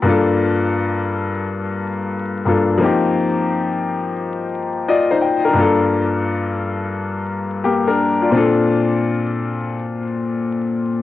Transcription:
0.02 2.41 G2 medium
0.02 2.42 A#3 medium
0.02 2.42 D4 medium
0.07 2.43 F4 medium
0.07 2.44 A4 medium
2.45 2.80 G2 soft
2.45 2.78 A#3 soft
2.45 2.81 D4 soft
2.45 2.81 F4 soft
2.45 2.82 A4 medium
2.78 5.51 F3 medium
2.78 5.52 A#3 medium
2.78 5.53 C4 medium
2.82 4.84 D#4 medium
2.82 4.85 G4 medium
4.88 5.09 F4 medium
4.88 5.09 D5 medium
4.88 5.20 D#5 medium
5.11 5.43 D#4 medium
5.11 5.43 C5 medium
5.21 5.54 G5 medium
5.45 5.55 D4 soft
5.45 5.77 A#4 medium
5.53 8.27 G2 medium
5.53 7.59 A#3 medium
5.53 7.59 D4 medium
5.58 7.60 F4 medium
5.58 7.61 A4 medium
7.64 7.85 A#3 soft
7.64 7.85 G4 medium
7.88 8.20 D4 medium
7.88 8.19 A#4 medium
8.22 8.34 F4 soft
8.22 8.54 D5 medium
8.31 11.02 A#2 medium
8.31 11.02 C4 medium
8.31 11.02 D4 medium
8.36 11.02 F4 medium
8.36 11.02 A4 medium

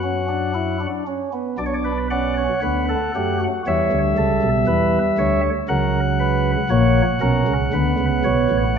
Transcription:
0.00 0.87 F#2 medium
0.00 0.87 F#3 medium
0.00 0.26 C#4 medium
0.00 0.87 F#4 medium
0.00 0.86 F#5 medium
0.28 0.52 D4 medium
0.54 0.78 E4 medium
0.80 1.04 D4 medium
1.07 1.30 C#4 medium
1.33 1.56 B3 medium
1.58 2.48 B1 medium
1.58 2.48 B2 medium
1.58 1.91 D4 medium
1.58 1.63 D5 medium
1.66 1.74 C#5 medium
1.74 1.97 D5 medium
1.85 2.08 B4 medium
2.10 2.44 C#4 medium
2.10 2.34 D5 medium
2.10 3.44 F#5 medium
2.37 2.60 C#5 medium
2.62 2.95 D2 medium
2.62 2.95 D3 medium
2.62 2.95 B3 medium
2.62 2.85 B4 medium
2.89 3.12 A4 medium
3.15 3.47 F#2 medium
3.15 3.47 F#3 medium
3.15 3.47 A3 medium
3.15 3.37 G4 medium
3.40 3.63 F#4 medium
3.67 3.89 E2 medium
3.67 3.89 E3 medium
3.67 5.40 G3 medium
3.67 3.98 C#5 medium
3.67 5.41 E5 medium
3.92 4.14 D2 medium
3.92 4.14 D3 medium
4.17 4.39 C#2 medium
4.17 4.39 C#3 medium
4.17 4.49 A4 medium
4.42 4.64 B1 medium
4.42 4.65 B2 medium
4.67 4.99 E2 medium
4.67 4.99 E3 medium
4.67 4.99 B4 medium
5.18 5.49 D2 medium
5.18 5.49 D3 medium
5.18 5.50 C#5 medium
5.68 6.56 C#2 medium
5.68 6.56 C#3 medium
5.68 6.56 F#3 medium
5.68 6.00 A#4 medium
5.68 8.79 F#5 medium
6.20 6.51 B4 loud
6.70 7.02 A#1 medium
6.70 7.02 A#2 medium
6.70 7.02 A#3 medium
6.70 7.02 C#5 loud
7.21 7.43 B1 medium
7.21 7.43 B2 medium
7.21 7.53 C#4 medium
7.21 7.53 A#4 loud
7.47 7.69 C#2 medium
7.47 7.69 C#3 medium
7.72 7.95 D2 medium
7.72 7.95 D3 medium
7.72 8.63 B3 medium
7.72 8.05 B4 medium
7.99 8.21 C#2 medium
7.99 8.21 C#3 medium
8.24 8.47 B1 medium
8.24 8.47 B2 medium
8.24 8.57 C#5 loud
8.50 8.79 A1 medium
8.50 8.79 A2 medium

